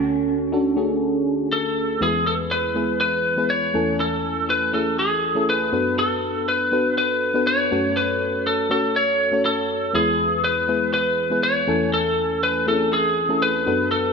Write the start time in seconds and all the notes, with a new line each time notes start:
Already playing: D2 D3 A3 C#4 F#4 A4
0.52 C#4 D4 F#4 A4
0.76 A3 C#4 F#4 G#4
1.53 A4
2.00 E2 E3 G#3 B3 E4 F#4 G#4 B4
2.07 G#4
2.27 A4
2.51 B4
2.75 G#3 B3 E4 G#4 B4
3.01 B4
3.37 G#3 B3 E4 G#4 B4
3.50 C#5
3.74 E2 E3 A3 C#4 E4 A4 G#5
4.00 A4
4.50 B4
4.74 A3 C#4 E4 G#4 A4
4.99 G#4
5.35 A3 C#4 E4 G#4 A4
5.50 B4
5.72 F#2 B3 D4 F#4 A4 B4
5.99 A4
6.48 B4
6.72 B3 D4 F#4 A4 B4
6.98 B4
7.34 B3 D4 F#4 A4 B4
7.47 C#5
7.71 F#2 A3 C#4 F#4 A4 C#5
7.97 B4
8.47 A4
8.70 A3 C#4 F#4 A4 C#5
8.96 C#5
9.32 A3 C#4 F#4 A4 C#5
9.46 A4
9.94 E2 E3 G#3 B3 E4 G#4 B4
10.44 B4
10.68 G#3 B3 E4 G#4 B4
10.94 B4
11.30 G#3 B3 E4 G#4 B4
11.43 C#5
11.67 E2 E3 A3 C#4 E4 A4 G#5
11.94 A4
12.43 B4
12.67 A3 C4 E4 G#4 A4
12.73 C#4
12.93 G#4
13.29 A3 C#4 E4 G#4 A4
13.42 B4
13.66 F#2 B3 D4 F#4 A4 B4
13.91 A4